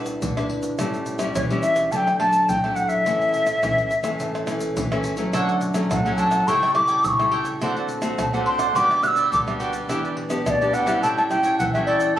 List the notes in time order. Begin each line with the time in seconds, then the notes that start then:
Already playing: G3 D4 E4 B4
0.06 pandeiro, shaker, surdo
0.22 D3, pandeiro, shaker, surdo
0.37 D4 E4 B4, pandeiro, tamborim, shaker
0.50 pandeiro
0.63 pandeiro, shaker, surdo
0.79 A2 G3 C#4 E4, pandeiro, tamborim, shaker, surdo
0.94 pandeiro, shaker
1.06 pandeiro, shaker
1.19 G3 C#4 E4, pandeiro, tamborim, shaker, surdo
1.35 E3 C#5, pandeiro, tamborim, shaker, surdo
1.50 G3 C#4 E4, pandeiro, shaker
1.62 E5, pandeiro, shaker
1.76 pandeiro, tamborim, shaker, surdo
1.92 D3 F#3 A3 D4 A5, pandeiro, shaker, surdo
1.96 G5
2.07 pandeiro, tamborim, shaker
2.19 F#3 A3 D4 A5, pandeiro, tamborim
2.33 pandeiro, shaker, surdo
2.49 A2 G5, pandeiro, shaker, surdo
2.64 F#3 A3 D4, pandeiro, tamborim, shaker
2.76 F#5, pandeiro, shaker
2.89 E5, pandeiro, shaker, surdo
3.06 A2 E3 A3 C#4, pandeiro, tamborim, shaker, surdo
3.21 pandeiro, shaker
3.34 pandeiro, shaker
3.47 pandeiro, tamborim, shaker, surdo
3.62 E3 A3 C#4, pandeiro, tamborim, shaker, surdo
3.78 pandeiro, shaker
3.91 pandeiro, shaker, surdo
4.03 E3 A3 C#4, pandeiro, tamborim, shaker, surdo
4.20 A2, pandeiro, shaker, surdo
4.35 pandeiro, tamborim, shaker
4.47 E3 A3 C#4, pandeiro, tamborim, shaker
4.60 pandeiro, shaker, surdo
4.77 E3, pandeiro, shaker, surdo
4.92 E3 A3 C#4, pandeiro, tamborim, shaker
5.04 pandeiro, shaker
5.17 F#3 A3 C#4, pandeiro, shaker, surdo
5.33 D3 D4 A4 C#5 F#5, pandeiro, tamborim, shaker, surdo
5.48 A4 C#5 F#5, pandeiro, shaker
5.61 muted cavaquinho stroke, pandeiro, shaker
5.74 F#3 A3 C#4, pandeiro, tamborim, shaker, surdo
5.90 A2 F#5, pandeiro, tamborim, shaker, surdo
6.05 F#3 A3 C#4 A4 C#5 F#5, pandeiro, shaker
6.18 D4 A4 C#5 F#5 A5, pandeiro, shaker, surdo
6.31 A4 C#5 F#5, pandeiro, tamborim, shaker, surdo
6.48 C#3 G3 A3 E4 G4 A4 C#5 G5 C#6, pandeiro, shaker, surdo
6.62 A4 C#5 G5, pandeiro, tamborim, shaker
6.74 G3 A3 E4 D6, muted cavaquinho stroke, pandeiro, tamborim
6.88 A4 C#5 G5, pandeiro, shaker, surdo
7.04 C#3 E6, pandeiro, shaker, surdo
7.08 C#6
7.19 G3 A3 E4 A4 C#5 G5, pandeiro, tamborim, shaker
7.31 G4 A4 C#5 G5, pandeiro
7.45 A4 C#5 G5, pandeiro, shaker, surdo
7.61 D3 A3 C4 D4 F#4 C5 D5 F#5, pandeiro, tamborim, shaker, surdo
7.76 C5 D5 F#5, pandeiro, shaker
7.89 muted cavaquinho stroke, pandeiro, shaker
8.02 A3 C4 F#4, pandeiro, tamborim, shaker, surdo
8.18 A2 A5, pandeiro, tamborim, shaker, surdo
8.33 A3 C4 F#4 C5 D5 F#5, pandeiro, shaker
8.45 D4 C5 D5 F#5 C6, pandeiro, surdo
8.58 C5 D5 F#5, pandeiro, tamborim, shaker, surdo
8.75 D3 G3 B3 F#4 G4 B4 D5 D6, pandeiro, shaker, surdo
8.90 G4 B4 D5, pandeiro, tamborim, shaker
9.02 G3 B3 F#4 F#6, muted cavaquinho stroke, pandeiro, tamborim, shaker
9.07 E6
9.16 G4 B4 D5, pandeiro, shaker, surdo
9.32 D3 D6, pandeiro, shaker, surdo
9.47 G3 B3 F#4 G4 B4 D5, pandeiro, tamborim, shaker
9.59 F#4 G4 B4 D5, pandeiro, shaker
9.73 G4 B4 D5, pandeiro, shaker, surdo
9.89 E3 B3 D4 E4 G4 B4 D5, pandeiro, tamborim, shaker, surdo
10.04 G4 B4 D5, pandeiro, shaker
10.17 muted cavaquinho stroke, pandeiro
10.29 B3 D4 G4, pandeiro, tamborim, shaker, surdo
10.46 B2 D5 E5, pandeiro, tamborim, shaker, surdo
10.61 B3 D4 G4 B4 D5, pandeiro, shaker
10.73 E4 G4 B4 D5 F#5, pandeiro, shaker, surdo
10.86 G3 C#4 E4 G4 B4 D5, pandeiro, tamborim, shaker, surdo
11.02 A2 E4 A4 C#5 G5 A5, pandeiro, shaker, surdo
11.17 A4 C#5 G5 A5, pandeiro, tamborim, shaker
11.30 G3 C#4 E4 G5, muted cavaquinho stroke, pandeiro, tamborim, shaker
11.43 A4 C#5 G5, pandeiro, shaker, surdo
11.59 E3 F#5, pandeiro, shaker, surdo
11.73 G3 C#4 E4 A4 C#5 E5 G5, pandeiro, tamborim, shaker
11.86 E4 A4 C#5 D5 G5, pandeiro
12.00 A4 C#5 G5, pandeiro, shaker, surdo
12.16 A5